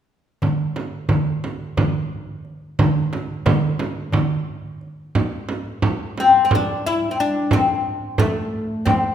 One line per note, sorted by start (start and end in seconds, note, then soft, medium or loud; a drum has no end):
0.42 darbuka dum medium
0.42 frame drum medium
0.76 darbuka tek medium
0.76 frame drum soft
1.09 frame drum medium
1.09 darbuka dum medium
1.44 frame drum soft
1.77 darbuka dum medium
1.77 frame drum medium
2.45 darbuka ka soft
2.79 frame drum medium
2.79 darbuka dum medium
3.13 darbuka tek medium
3.13 frame drum medium
3.46 darbuka dum medium
3.46 frame drum medium
3.79 darbuka tek medium
3.79 frame drum medium
4.12 darbuka dum medium
4.12 frame drum medium
4.81 darbuka ka soft
5.15 frame drum medium
5.49 frame drum medium
5.82 frame drum medium
6.18 6.44 C4 medium
6.18 frame drum medium
6.45 6.51 C4 medium
6.51 frame drum medium
6.55 6.86 D4 medium
6.87 7.11 E4 medium
7.11 7.18 C4 medium
7.20 7.54 D4 medium
7.51 8.19 C4 medium
7.51 frame drum medium
8.18 8.85 A3 medium
8.18 frame drum medium
8.86 9.15 C4 medium
8.86 frame drum medium